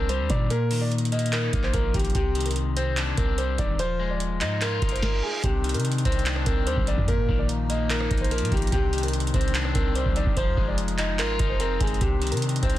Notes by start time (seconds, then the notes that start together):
Already playing: C2 C4 D4
0.09 G3 C5, closed hi-hat
0.20 D#2
0.30 A#2 D#3 D5, kick, closed hi-hat
0.50 A#2 A#4, closed hi-hat
0.71 D#3, open hi-hat
0.81 D5
0.92 closed hi-hat
0.98 closed hi-hat
1.05 closed hi-hat
1.12 A#3 D#5, closed hi-hat
1.19 closed hi-hat
1.26 closed hi-hat
1.32 D#4 A#4, clap, closed hi-hat
1.53 A#1 A#3, kick, closed hi-hat
1.63 C5, clap
1.74 A#1 F3 A#4, kick, closed hi-hat
1.94 A#1 D#3 G4, kick, closed hi-hat
1.99 closed hi-hat
2.05 closed hi-hat
2.10 closed hi-hat
2.15 C2 C3 G4, kick, closed hi-hat
2.35 D#3, closed hi-hat, open hi-hat
2.40 closed hi-hat
2.46 A#4, closed hi-hat
2.51 closed hi-hat
2.56 closed hi-hat
2.77 C4 C5, closed hi-hat
2.97 D4, clap, closed hi-hat
3.17 C2 C4 A#4, kick, closed hi-hat
3.38 G3 C5, closed hi-hat
3.58 D#1 D#3 D5, kick, closed hi-hat
3.79 F3 C5, closed hi-hat
3.99 G#3
4.10 D5
4.20 closed hi-hat
4.41 G#2 D#4 D#5, clap, closed hi-hat
4.61 F4 A#4, clap, closed hi-hat, reverse cymbal
4.82 F1 D#4, kick, closed hi-hat
4.89 C5, closed hi-hat
4.96 closed hi-hat
5.02 A#4, kick, snare
5.23 G#4
5.44 C2 C3 D#3 C4 D4 G4, kick, closed hi-hat
5.64 D#3, closed hi-hat
5.69 closed hi-hat
5.74 C3 A#4, closed hi-hat
5.80 closed hi-hat
5.85 closed hi-hat
5.92 closed hi-hat
5.98 closed hi-hat
6.05 C2 C4 C5, kick, closed hi-hat
6.12 closed hi-hat
6.19 closed hi-hat
6.26 D4, clap, closed hi-hat
6.36 cross-stick
6.46 C2 C4 A#4, kick, closed hi-hat
6.67 D#2 G3 C5, closed hi-hat
6.77 A#1, kick
6.87 D#3 D5, closed hi-hat
6.98 F2, kick
7.08 A#2 F3 A#3 D#4 A#4, kick, closed hi-hat
7.18 A#2
7.29 A#1 D#3, kick
7.39 D5
7.49 closed hi-hat
7.70 A#3 D#5, closed hi-hat
7.90 D#4 A#4, clap, closed hi-hat
8.01 cross-stick
8.11 A#1 A#3, kick, closed hi-hat
8.18 C5, closed hi-hat
8.24 closed hi-hat
8.31 F3 A#4, closed hi-hat
8.38 A#2, closed hi-hat
8.45 closed hi-hat
8.52 A#1 D#3 G4, kick, closed hi-hat
8.57 closed hi-hat
8.62 closed hi-hat
8.67 closed hi-hat
8.72 C2 C3 D#3 C4 D4 G4, kick, closed hi-hat
8.93 D#3, closed hi-hat
8.98 closed hi-hat
9.03 A#4, closed hi-hat
9.08 closed hi-hat
9.13 closed hi-hat
9.20 closed hi-hat
9.27 closed hi-hat
9.34 C2 C4 C5, kick, closed hi-hat
9.41 closed hi-hat
9.48 closed hi-hat
9.55 D4, clap, closed hi-hat
9.65 cross-stick
9.75 C2 C4 A#4, kick, closed hi-hat
9.95 G3 C5, closed hi-hat
10.06 C2, kick
10.16 D#3 D5, closed hi-hat
10.26 F1, kick
10.37 F3 D#4 G#4 C5, kick, closed hi-hat
10.47 F2
10.57 F1 G#3, kick
10.68 D5
10.78 closed hi-hat
10.88 closed hi-hat
10.98 D#4 D#5, clap, closed hi-hat
11.19 G#1 F4 A#4, clap, closed hi-hat
11.39 F1 D#4, kick, closed hi-hat
11.50 C5
11.60 C4 A#4, closed hi-hat
11.80 F1 G#3 G#4, kick, closed hi-hat
11.87 closed hi-hat
11.94 closed hi-hat
12.01 C2 C3 D#3 C4 D4 G4, kick, closed hi-hat
12.22 D#3, closed hi-hat
12.27 closed hi-hat
12.32 C3 A#4, closed hi-hat
12.37 closed hi-hat
12.42 closed hi-hat
12.49 closed hi-hat
12.56 closed hi-hat
12.63 C2 C4 C5, kick, closed hi-hat
12.70 closed hi-hat